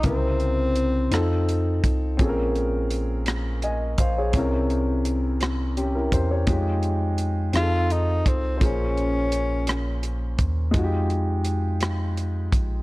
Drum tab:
HH |xxxxxx|xxxxxx|xxxxxx|xxxxxx|
SD |---r--|---r--|---r--|---r--|
BD |o----o|o----o|o----o|o----o|

HH |xxxxxx|xxxxxx|
SD |---r--|---r--|
BD |o----o|o----o|